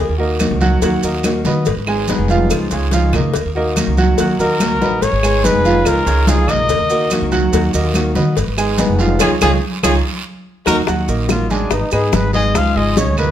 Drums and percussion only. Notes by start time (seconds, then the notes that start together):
0.19 high conga
0.39 cowbell, high conga, short guiro, claves, maracas
0.61 high conga, short guiro, maracas
0.81 cowbell, high conga, long guiro, maracas
1.03 high conga, maracas
1.23 cowbell, high conga, short guiro, claves, maracas
1.45 high conga, short guiro, maracas
1.65 cowbell, high conga, long guiro, maracas
1.87 high conga, claves
2.08 cowbell, high conga, short guiro, maracas
2.28 high conga, short guiro, maracas
2.50 cowbell, high conga, long guiro, claves, maracas
2.71 cowbell, high conga, maracas
2.91 cowbell, high conga, short guiro, maracas
3.13 cowbell, high conga, low conga, short guiro, claves, maracas
3.34 cowbell, high conga, long guiro, maracas
3.56 high conga
3.76 cowbell, high conga, short guiro, claves, maracas
3.97 high conga, short guiro, maracas
4.18 cowbell, high conga, long guiro, maracas
4.39 high conga, maracas
4.60 cowbell, high conga, short guiro, claves, maracas
4.82 high conga, short guiro, maracas
5.02 cowbell, high conga, long guiro, maracas
5.23 high conga, claves, maracas
5.44 cowbell, high conga, short guiro, maracas
5.65 high conga, short guiro, maracas
5.85 cowbell, high conga, long guiro, claves, maracas
6.07 cowbell, high conga, maracas
6.27 cowbell, high conga, short guiro, maracas
6.48 cowbell, high conga, low conga, short guiro, claves, maracas
6.69 cowbell, high conga, low conga, long guiro, maracas
6.90 maracas
7.10 cowbell, high conga, short guiro, claves, maracas
7.32 high conga, short guiro, maracas
7.53 cowbell, long guiro, maracas
7.74 high conga, maracas
7.94 cowbell, high conga, short guiro, claves, maracas
8.15 high conga, short guiro, maracas
8.36 cowbell, high conga, long guiro, maracas
8.58 high conga, claves, maracas
8.78 cowbell, high conga, short guiro, maracas
8.99 high conga, short guiro, maracas
9.20 cowbell, high conga, long guiro, claves, maracas
9.40 cowbell, high conga, long guiro, claves, maracas
9.83 cowbell, high conga, long guiro, claves, maracas
10.66 cowbell, high conga, long guiro, claves, maracas
10.87 high bongo, high conga, long guiro, maracas
11.08 high bongo, high conga, maracas
11.29 high bongo, high conga, short guiro, claves, maracas
11.50 high conga, short guiro, maracas
11.70 high bongo, high conga, long guiro, maracas
11.91 high bongo, high conga, claves, maracas
12.12 high bongo, low bongo, high conga, short guiro, maracas
12.33 high bongo, high conga, short guiro, maracas
12.55 high bongo, high conga, long guiro, claves, maracas
12.77 high bongo
12.97 high bongo, high conga, short guiro, maracas
13.17 high conga, low conga, short guiro, claves, maracas